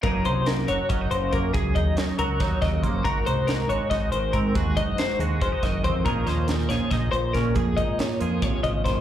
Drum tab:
HH |xxxxxxx|xxxxxxx|xxxxxxx|xxxxxxx|
SD |--o----|--o-oo-|--o-o--|--o--o-|
BD |o---o-o|oo--ooo|o---o-o|oo--ooo|

HH |xxxxxxx|xxxxxxx|
SD |-oooo-o|--o---o|
BD |o---o-o|oo--ooo|